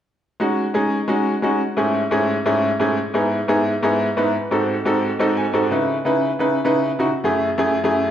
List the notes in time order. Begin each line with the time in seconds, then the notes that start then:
0.40 G#3 C#4 D#4 F#4
0.74 G#3 C#4 D#4 G#4
1.08 G#3 C#4 D#4 F#4
1.42 G#3 C#4 D#4 F#4
1.77 G#2 A3 C#4 E4 G#4
2.11 G#2 A3 C#4 E4 G#4
2.46 G#2 A3 C#4 E4 G#4
2.80 G#2 A3 C#4 E4 G#4
3.14 G#2 B3 D#4 E4 G#4
3.48 G#2 B3 D#4 E4 G#4
3.83 G#2 B3 D#4 E4 G#4
4.17 G#2 B3 D#4 E4 B4
4.51 G#2 C4 D#4 F#4 A4
4.85 G#2 C4 D#4 F#4 A4
5.19 G#2 C4 D#4 F#4 A4 D#5
5.37 G#5
5.53 G#2 C4 D#4 F#4 A4
5.71 C#3 D#4 E4 B4
6.05 C#3 D#4 E4 B4
6.39 C#3 D#4 E4 B4
6.65 C#3 D#4 E4 B4
6.99 C#3 D#4 E4 F#4
7.24 F#2 A3 E4 G#4
7.58 F#2 A3 E4 G#4
7.84 F#2 A3 E4 G#4